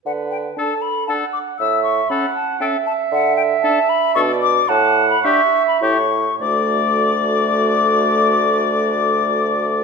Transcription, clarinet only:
X:1
M:3/4
L:1/8
Q:1/4=111
K:D
V:1 name="Clarinet"
B2 A2 f2 | e2 f2 e2- | e4 d2 | f2 e2 c z |
F6- | F6 |]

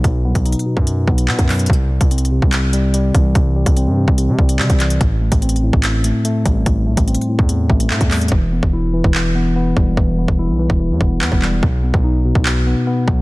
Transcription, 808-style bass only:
X:1
M:4/4
L:1/16
Q:1/4=145
K:Em
V:1 name="808-style bass" clef=bass
B,,,2 C,, B,,,2 z2 F,,3 B,,,2 B,, F,,3 | C,,3 C,,4 C,,6- C,, C,,2 | C,,3 C,,2 G,,2 C,,2 C, C,,2 C, C,,3 | A,,,3 A,,,4 A,,,4 z3 A,,,2 |
A,,,2 B,,, A,,,2 z2 E,,3 A,,,2 A,, E,,3 | E,,,3 E,,,4 E,,,6- E,,, E,,,2 | E,,,3 E,,,2 B,,,2 E,,,2 E,, E,,,2 E,, E,,,3 | B,,,3 B,,,4 B,,,4 z3 B,,,2 |]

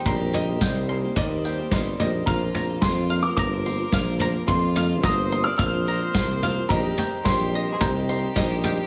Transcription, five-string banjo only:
X:1
M:4/4
L:1/8
Q:1/4=108
K:Eb
V:1 name="Five-string banjo"
[egc'] e g c' e g c' e | f b c' f b c' f b | c' f b c' f b c' f | e g c' e g c' e g |]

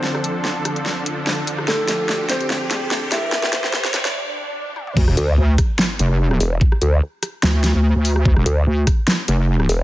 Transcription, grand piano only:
X:1
M:4/4
L:1/8
Q:"Swing 16ths" 1/4=146
K:Dm
V:1 name="Grand piano"
[Cc]8 | [A,A]3 [Cc]4 [Ee]- | [Ee]4 z4 | z8 |
z8 | z8 |]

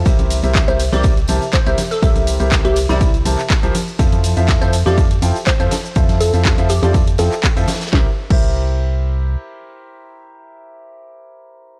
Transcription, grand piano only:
X:1
M:4/4
L:1/16
Q:"Swing 16ths" 1/4=122
K:Cmix
V:1 name="Grand piano"
[C,EGBce]3 [C,EGBce]2 [C,EGBce] z [C,EGBcd]2 z [C,EGBca] z2 [C,EGBce] z2 | [C,EGBce]3 [C,EGBce]2 [C,EGBce] z [C,EGBcd]2 z [C,EGBca] z2 [F,EGBce] z2 | [F,EFAce]3 [F,EFAce]2 [F,EFAce] z [F,EFAcd]2 z [F,EFAcg] z2 [F,EFAce] z2 | [F,EFAce]3 [F,EFAce]2 [F,EFAce] z [F,EFAcd]2 z [F,EFAcg] z2 [F,EFAce] z2 |
[EGBce] z2 [EGBce]12- [EGBce]- | [EGBce]16 |]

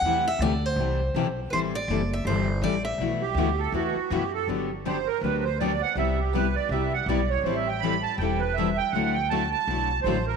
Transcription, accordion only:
X:1
M:4/4
L:1/8
Q:"Swing" 1/4=162
K:Bphr
V:1 name="Accordion"
z8 | z8 | z G2 A F2 G A | [K:G] z2 c _B =B c d f |
e G B d e f d ^c | (3c e g b a g B e g | f g a a3 c _B |]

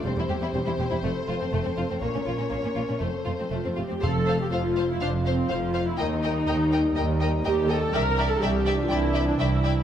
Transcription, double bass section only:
X:1
M:4/4
L:1/16
Q:1/4=122
K:F
V:1 name="Double bass section" clef=bass
E,,, z E,,, z E,,, z E,,, z F,,, z F,,, z F,,, z F,,, z | B,,, z B,,, z B,,, z B,,, z F,,, z F,,, z F,,, z F,,, z | F,,,4 F,,,4 F,,,4 F,,,4 | _E,,4 E,,4 E,,4 E,,4 |
C,,4 C,,4 C,,4 C,,4 |]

